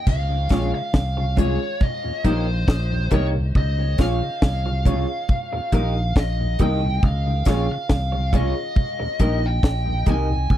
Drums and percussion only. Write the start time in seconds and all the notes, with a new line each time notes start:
0.07 kick, crash, low conga
0.49 kick, snare, closed hi-hat
0.93 kick, snare, high conga
1.37 kick, closed hi-hat, high conga, low conga
1.80 kick, low conga
2.24 kick, closed hi-hat
2.68 kick, snare
3.11 kick, closed hi-hat, high conga
3.55 kick, low conga
3.98 kick, snare, closed hi-hat
4.42 kick, snare, high conga
4.85 kick, closed hi-hat, high conga, low conga
5.29 kick, low conga
5.72 kick, closed hi-hat
6.16 kick, snare
6.59 kick, closed hi-hat, high conga
7.03 kick, low conga
7.45 kick, snare, closed hi-hat
7.89 kick, snare, high conga
8.33 kick, closed hi-hat, high conga, low conga
8.76 kick, low conga
9.19 kick, closed hi-hat
9.63 kick, snare
10.06 kick, closed hi-hat, high conga
10.50 kick, low conga